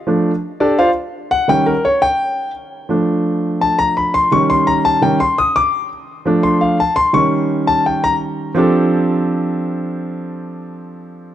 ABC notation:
X:1
M:4/4
L:1/8
Q:1/4=169
K:F
V:1 name="Grand piano"
z3 [DGAd] [Fcdf] z2 _g | g B _d g3 z2 | z4 a b =b c' | _d' c' b a g c' _e' =d'- |
d' z3 c' f a c' | _d'3 a g b z2 | [F,CDGA]8- | [F,CDGA]8 |]
V:2 name="Grand piano" clef=bass
[F,A,D] z6 z | [_E,G,_D] z6 z | [F,A,D]8 | [_E,G,_D]4 [E,G,D] z3 |
z3 [F,A,D]3 z2 | [_E,G,_D]8 | z8 | z8 |]